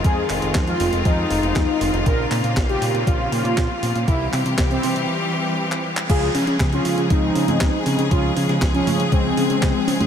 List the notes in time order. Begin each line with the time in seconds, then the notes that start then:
Already playing: D#3 G#3 C4 F4
0.04 F2 G#4, kick, closed hi-hat
0.30 F1, clap, open hi-hat
0.42 F1, closed hi-hat
0.55 F2, kick, snare, clap, closed hi-hat
0.67 F4, closed hi-hat
0.80 F1, open hi-hat
0.93 F1, closed hi-hat
1.05 F2 D#4, kick, closed hi-hat
1.30 F1, open hi-hat
1.43 F1, closed hi-hat
1.56 F2, kick, snare, clap, closed hi-hat
1.81 F1, open hi-hat
1.93 F1, closed hi-hat
2.06 A#1 C#3 A#3 A#4, kick, closed hi-hat
2.31 A#2, clap, open hi-hat
2.44 A#2, closed hi-hat
2.57 A#1, kick, snare, clap, closed hi-hat
2.69 G4, closed hi-hat
2.82 A#2, open hi-hat
2.94 A#2, closed hi-hat
3.07 A#1 F4, kick, closed hi-hat
3.32 A#2, open hi-hat
3.44 A#2, closed hi-hat
3.57 A#1, kick, snare, clap, closed hi-hat
3.83 A#2, open hi-hat
3.95 A#2, closed hi-hat
4.08 C2 E3 G3 E4 G4, kick, closed hi-hat
4.33 C3, clap, open hi-hat
4.46 C3, closed hi-hat
4.58 C2, kick, snare, clap, closed hi-hat
4.71 C4, closed hi-hat
4.83 C3, open hi-hat
4.96 C3, closed hi-hat
5.72 clap
5.97 clap
6.09 C#2 C#3 F3 G#3 F4 G#4, kick, closed hi-hat, crash
6.35 C#3, open hi-hat
6.47 C#3, closed hi-hat
6.60 C#2, kick, snare, clap, closed hi-hat
6.73 C#4 F4, closed hi-hat
6.85 C#3, open hi-hat
6.98 C#3, closed hi-hat
7.10 C#2 C4 D#4, kick, closed hi-hat
7.36 C#3, open hi-hat
7.48 C#3, closed hi-hat, high conga
7.61 C#2, kick, snare, clap, closed hi-hat
7.86 C#3, open hi-hat
7.99 C#3, closed hi-hat
8.11 C#2 C#4 F4, kick, closed hi-hat
8.37 C#3, open hi-hat
8.49 C#3, snare, closed hi-hat
8.62 C#2, kick, snare, clap, closed hi-hat
8.74 F3 C#4, closed hi-hat
8.87 C#3, open hi-hat, high conga
9.00 C#3, closed hi-hat
9.12 C#2 G#3 C4, kick, closed hi-hat
9.37 C#3, open hi-hat
9.50 C#3, closed hi-hat
9.62 C#2, kick, snare, clap, closed hi-hat
9.87 C#3, open hi-hat
10.00 C#3, closed hi-hat, high conga